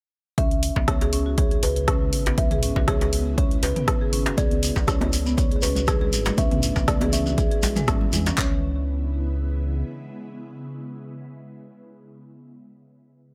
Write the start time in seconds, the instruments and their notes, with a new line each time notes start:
0.38 analog synth bass C#2, ambient pad C#3 G#3 B3 E4, marimba C#4, kalimba E5, kick, closed hi-hat
0.51 closed hi-hat
0.63 open hi-hat
0.76 analog synth bass C#2, marimba B3, kick, djembe slap
0.88 kalimba C#5, kick, cross-stick, closed hi-hat
1.01 marimba G#4, closed hi-hat, djembe tone
1.13 marimba C#4, open hi-hat
1.26 marimba F#4
1.38 marimba G#4, kalimba C#5, kick, closed hi-hat
1.51 marimba G#4, closed hi-hat
1.63 analog synth bass C#2, kalimba B4, open hi-hat, djembe tone
1.76 closed hi-hat
1.88 marimba C#4, kick, cross-stick, closed hi-hat
2.13 analog synth bass G#1, open hi-hat
2.26 marimba B3, closed hi-hat, djembe slap, djembe tone
2.38 analog synth bass C#2, kalimba E5, kick, closed hi-hat
2.51 marimba G#4, closed hi-hat, mid tom
2.63 marimba C#4, open hi-hat
2.76 analog synth bass C#2, marimba F#4, kick, djembe slap, djembe tone
2.88 marimba G#4, kalimba C#5, kick, cross-stick, closed hi-hat
3.01 marimba G#4, closed hi-hat, djembe tone
3.13 open hi-hat
3.38 marimba C#4, kalimba C#5, kick, closed hi-hat
3.51 closed hi-hat
3.63 analog synth bass C#2, kalimba B4, open hi-hat, djembe slap, djembe tone
3.76 marimba B3, closed hi-hat, mid tom
3.88 kick, cross-stick, closed hi-hat
4.01 marimba G#4
4.13 analog synth bass G#1, marimba C#4, open hi-hat
4.26 marimba F#4, closed hi-hat, djembe slap
4.37 analog synth bass C#2, ambient pad E3 A3 D4, marimba G#4, kalimba D5, kick, closed hi-hat, high conga, shekere
4.51 marimba G#4, closed hi-hat, high conga
4.63 open hi-hat, shekere
4.76 analog synth bass C#2, kick, djembe slap, shekere
4.87 marimba C#4, kalimba C#5, kick, cross-stick, closed hi-hat, shekere
5.01 closed hi-hat, high conga, djembe tone
5.13 open hi-hat, shekere
5.26 marimba B3, high conga, shekere
5.37 kalimba C#5, kick, closed hi-hat, shekere
5.51 marimba G#4, closed hi-hat
5.56 kalimba C#5
5.62 analog synth bass C#2, marimba C#4, kalimba B4, open hi-hat, djembe tone, shekere
5.75 marimba F#4, closed hi-hat, low conga, shekere
5.87 marimba G#4, kick, cross-stick, closed hi-hat, shekere
6.01 marimba G#4, low conga
6.13 analog synth bass G#1, open hi-hat, shekere
6.25 closed hi-hat, djembe slap, djembe tone, low conga, shekere
6.38 analog synth bass C#2, ambient pad B3, marimba C#4, kalimba E5, kick, closed hi-hat, high conga, shekere
6.51 closed hi-hat, mid tom, high conga
6.63 open hi-hat, shekere
6.76 analog synth bass C#2, marimba B3, kick, djembe slap, djembe tone, shekere
6.88 kalimba D5, kick, cross-stick, closed hi-hat, shekere
7.01 marimba G#4, closed hi-hat, high conga, djembe tone
7.13 marimba C#4, kalimba E5, open hi-hat, shekere
7.26 marimba F#4, high conga, shekere
7.38 analog synth bass C#2, marimba G#4, kick, closed hi-hat, shekere
7.51 marimba G#4, closed hi-hat
7.63 open hi-hat, djembe slap, djembe tone, low conga, shekere
7.76 marimba G#3, closed hi-hat, mid tom, low conga, shekere
7.88 analog synth bass G#1, marimba C#4, kick, cross-stick, closed hi-hat, high conga, shekere
8.01 low conga
8.12 analog synth bass E2, marimba G#3, open hi-hat, low conga, shekere
8.26 marimba C#4, closed hi-hat, djembe slap, shekere
8.38 analog synth bass C#2, ambient pad C#3 G#3 B3 E4, marimba C#4, kalimba C#5, kick, clap